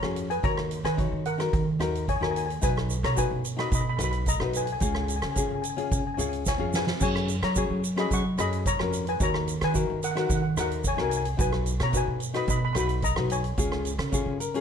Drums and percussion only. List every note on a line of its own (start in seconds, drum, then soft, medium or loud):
0.03 cross-stick medium
0.16 closed hi-hat medium
0.30 closed hi-hat medium
0.44 kick loud
0.44 closed hi-hat medium
0.57 cross-stick medium
0.71 closed hi-hat medium
0.85 cross-stick medium
0.85 closed hi-hat medium
0.98 kick loud
0.98 closed hi-hat medium
1.25 closed hi-hat medium
1.40 cross-stick medium
1.40 closed hi-hat medium
1.53 kick loud
1.53 closed hi-hat medium
1.80 cross-stick medium
1.80 closed hi-hat medium
1.95 closed hi-hat medium
2.08 kick medium
2.08 closed hi-hat medium
2.23 cross-stick medium
2.36 closed hi-hat medium
2.50 closed hi-hat medium
2.62 kick loud
2.62 closed hi-hat medium
2.62 shaker loud
2.77 cross-stick medium
2.90 closed hi-hat medium
2.90 shaker medium
3.04 cross-stick medium
3.04 closed hi-hat medium
3.17 kick medium
3.17 closed hi-hat medium
3.17 shaker loud
3.45 closed hi-hat medium
3.45 shaker medium
3.59 cross-stick medium
3.59 closed hi-hat medium
3.71 kick loud
3.71 closed hi-hat medium
3.71 shaker loud
3.99 cross-stick medium
3.99 closed hi-hat medium
3.99 shaker medium
4.12 closed hi-hat medium
4.26 kick medium
4.26 closed hi-hat medium
4.26 shaker loud
4.40 cross-stick medium
4.53 closed hi-hat medium
4.53 shaker medium
4.67 closed hi-hat medium
4.80 kick loud
4.80 closed hi-hat medium
4.80 shaker loud
4.95 cross-stick medium
5.08 closed hi-hat medium
5.08 shaker medium
5.22 cross-stick medium
5.22 closed hi-hat medium
5.36 kick medium
5.36 closed hi-hat medium
5.36 shaker loud
5.64 closed hi-hat medium
5.64 shaker medium
5.78 closed hi-hat medium
5.91 kick loud
5.91 closed hi-hat medium
5.91 shaker loud
6.19 closed hi-hat medium
6.19 shaker medium
6.33 closed hi-hat medium
6.46 kick medium
6.46 snare medium
6.46 shaker loud
6.73 snare loud
6.73 shaker medium
6.87 snare loud
7.01 kick loud
7.01 crash loud
7.01 shaker medium
7.15 cross-stick medium
7.28 closed hi-hat medium
7.28 shaker medium
7.43 cross-stick loud
7.43 closed hi-hat medium
7.55 kick medium
7.55 closed hi-hat medium
7.55 shaker loud
7.84 closed hi-hat medium
7.84 shaker medium
7.97 cross-stick medium
7.97 closed hi-hat medium
8.11 kick loud
8.11 closed hi-hat medium
8.11 shaker medium
8.38 cross-stick medium
8.38 closed hi-hat medium
8.38 shaker medium
8.53 closed hi-hat medium
8.66 kick loud
8.66 closed hi-hat medium
8.66 shaker loud
8.79 cross-stick medium
8.93 closed hi-hat medium
8.93 shaker medium
9.07 closed hi-hat medium
9.20 kick loud
9.20 closed hi-hat medium
9.20 shaker medium
9.34 cross-stick medium
9.48 closed hi-hat medium
9.48 shaker medium
9.61 cross-stick medium
9.61 closed hi-hat medium
9.75 kick medium
9.75 closed hi-hat medium
9.75 shaker loud
10.03 closed hi-hat medium
10.03 shaker medium
10.17 cross-stick medium
10.17 closed hi-hat medium
10.30 kick loud
10.30 closed hi-hat medium
10.30 shaker medium
10.57 cross-stick medium
10.57 closed hi-hat medium
10.57 shaker medium
10.71 closed hi-hat medium
10.84 kick loud
10.84 closed hi-hat medium
10.84 shaker loud
10.98 cross-stick medium
11.11 closed hi-hat loud
11.11 shaker medium
11.25 closed hi-hat medium
11.39 kick loud
11.39 closed hi-hat medium
11.39 shaker loud
11.52 cross-stick medium
11.66 closed hi-hat medium
11.66 shaker medium
11.80 cross-stick medium
11.80 closed hi-hat medium
11.93 kick medium
11.93 closed hi-hat medium
11.93 shaker loud
12.20 closed hi-hat medium
12.20 shaker medium
12.34 cross-stick medium
12.34 closed hi-hat medium
12.48 kick loud
12.48 closed hi-hat medium
12.48 shaker medium
12.75 cross-stick medium
12.75 closed hi-hat medium
12.75 shaker medium
12.89 closed hi-hat medium
13.02 kick loud
13.02 closed hi-hat medium
13.02 shaker loud
13.16 cross-stick medium
13.30 closed hi-hat medium
13.30 shaker medium
13.44 closed hi-hat medium
13.57 kick loud
13.57 closed hi-hat medium
13.57 shaker medium
13.72 cross-stick medium
13.85 closed hi-hat medium
13.85 shaker medium
13.99 cross-stick loud
13.99 closed hi-hat medium
14.12 kick medium
14.12 closed hi-hat medium
14.12 shaker loud
14.40 closed hi-hat medium
14.40 shaker medium
14.55 closed hi-hat medium